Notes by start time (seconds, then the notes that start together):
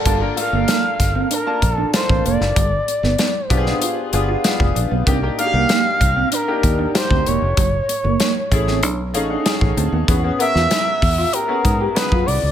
0.05 G1 G3 A#3 D4 F4 A4, kick, closed hi-hat
0.20 A#3 D4 F4 A#4
0.35 A3 D4 F4 A4 F5, muted clean electric guitar stroke, closed hi-hat
0.42 A#3
0.53 G1 A#3
0.68 A#3, snare, closed hi-hat
1.00 G1, muted clean electric guitar stroke, kick, snare, closed hi-hat
1.15 C4
1.31 D4 A#4, closed hi-hat
1.46 A#3 D4 F4 A5, muted clean electric guitar stroke
1.62 A#1, kick, closed hi-hat
1.74 D4 A4
1.93 A#3 D4 F4 A4 C5, muted clean electric guitar stroke, snare, closed hi-hat
2.09 A1 C4, kick
2.25 F1 A#3 D5, closed hi-hat
2.41 F#1, snare
2.56 G1 G3, kick, closed hi-hat
2.88 muted clean electric guitar stroke, closed hi-hat
3.03 G1 B3, snare
3.19 B3, snare, closed hi-hat
3.46 C5
3.50 B1 B3 D4 F4 G4, muted clean electric guitar stroke, kick, closed hi-hat
3.57 G#4
3.66 D4, snare
3.82 F4, closed hi-hat
4.13 G1 B3 D4 F4 G#4, muted clean electric guitar stroke, closed hi-hat
4.28 F4
4.44 B3 D4 F4 G#4, muted clean electric guitar stroke, snare, closed hi-hat
4.60 F1, kick
4.75 A#1 D4, closed hi-hat
4.91 B1 B3
5.06 C2 A#3 C4 D4 D#4 G4, kick, closed hi-hat
5.22 A#3 D4 D#4 G4
5.38 A#3 D4 D#4 F#4 F5, muted clean electric guitar stroke, closed hi-hat
5.46 G4
5.53 C2 A#3
5.69 A#3, snare, closed hi-hat
6.01 C2, muted clean electric guitar stroke, kick, closed hi-hat
6.16 C4
6.32 D4 A#4, closed hi-hat
6.47 A#3 D4 D#4 G4, muted clean electric guitar stroke
6.63 D#2, kick, closed hi-hat
6.79 D4
6.94 A#3 D4 D#4 G4 C5, snare, closed hi-hat
7.10 D2 C4, kick
7.26 E1 A#3 C#5, closed hi-hat
7.42 F1
7.57 F#1 F#3, kick, closed hi-hat
7.89 muted clean electric guitar stroke, closed hi-hat
8.04 F#1 A#3
8.20 A#3, snare, closed hi-hat
8.51 A1 A3 C#4 E4 G#4, muted clean electric guitar stroke, kick, closed hi-hat
8.67 C4, snare
8.83 B1 D4, closed hi-hat
9.14 A1 A3 C#4 D#4 G#4 F5, muted clean electric guitar stroke, closed hi-hat
9.30 D4 F#5
9.45 A3 C#4 D#4 G#4 G#5, snare, closed hi-hat
9.61 A1, kick
9.77 D2 C4 A5, closed hi-hat
9.92 D#2 B3
10.08 E2 B3 C#4 E4 F#4 G#4, kick, closed hi-hat
10.23 B3 C#4 F#4 G#4
10.39 B3 C#4 F#4 A#4 E5, muted clean electric guitar stroke, closed hi-hat
10.55 E2 F4, snare
10.71 E4, snare, closed hi-hat
11.02 E2, muted clean electric guitar stroke, kick, open hi-hat
11.18 F4
11.33 G4 A#4, closed hi-hat
11.48 B3 C#4 F#4 G#4, muted clean electric guitar stroke
11.65 G#2, kick, closed hi-hat
11.81 G4
11.95 C#3 B3 F#4 G#4 B4, muted clean electric guitar stroke, snare, closed hi-hat
12.12 F#2 F4, kick
12.26 C2 E4 D5, open hi-hat
12.43 C#2